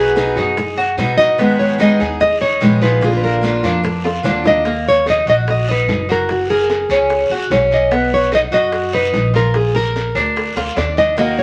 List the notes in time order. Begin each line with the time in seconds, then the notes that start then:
Already playing: B1 B2 F#3 B3 D#4 F#4 G#4 B4
0.16 B2 F#3 B3 D#4 F#4, high bongo, short guiro
0.36 F#2 B3 D#4 F#4, high bongo, short guiro
0.57 muted steel-string acoustic guitar stroke, high bongo, long guiro
0.77 F#4, high bongo
0.97 G#2 B2 F#3 B3 D#4 F#4, high bongo, low bongo, short guiro
1.18 B3 D#4 F#4 D#5, short guiro
1.38 D#3 G#3 B3 D#4 G#4, high bongo, long guiro
1.59 C#5, high bongo
1.78 D#3 G#3 B3 D#4 G#4 D#5, high bongo, short guiro
1.99 D#2 B3 D#4 G#4, high bongo, short guiro
2.20 D#5, muted steel-string acoustic guitar stroke, high bongo, long guiro
2.41 D#4 C#5, high bongo
2.61 A#1 D#3 G#3 B3 D#4 G#4, high bongo, low bongo, short guiro
2.81 B3 D#4 F4 G#4 B4, short guiro
3.01 D3 A#3 D4 F4 G#4, high bongo, long guiro
3.17 B4
3.23 A#4, high bongo
3.41 D3 A#3 D4 F4, high bongo, short guiro
3.63 F2 A#3 D4 F4, high bongo, short guiro
3.83 muted steel-string acoustic guitar stroke, high bongo, long guiro
4.04 F4, high bongo
4.23 D#2 D3 A#3 D4 F4, low bongo, short guiro
4.44 A#3 D4 F4 D#5, low bongo, short guiro
4.65 A#3, high bongo, long guiro
4.86 C#5, high bongo
5.06 D#4 D#5, high bongo, short guiro
5.26 A#1 F#4 D#5, high bongo, short guiro
5.47 D#5, high bongo, long guiro
5.68 D#4 B4, high bongo
5.87 F#1, high bongo, low bongo, short guiro
6.09 F#4 A#4, short guiro
6.29 F#4, high bongo, long guiro
6.50 G#4 A#4, high bongo
6.70 high bongo, short guiro
6.89 C#2 C#4, high bongo, short guiro
7.10 high bongo, long guiro
7.30 C#2 F#4, high bongo
7.50 B1 C#4, high bongo, low bongo, short guiro
7.71 D#5, short guiro
7.91 B3, high bongo, long guiro
8.12 C#5, high bongo
8.32 D#4 D#5, high bongo, short guiro
8.51 F#2 F#4 D#5, high bongo, short guiro
8.72 high bongo, long guiro
8.93 D#4 B4, high bongo
9.13 A#1, high bongo, low bongo, short guiro
9.34 F4 A#4, short guiro
9.54 G#4, high bongo, long guiro
9.75 A#4, high bongo
9.96 high bongo, short guiro
10.15 D2 D4, high bongo, short guiro
10.36 high bongo, long guiro
10.56 D2 F4, high bongo
10.76 D#2 D4 D5, high bongo, short guiro
10.97 D#5, low bongo, short guiro
11.17 D#3 A#3 D#4 F#4 D#5, high bongo, long guiro
11.39 C#5, high bongo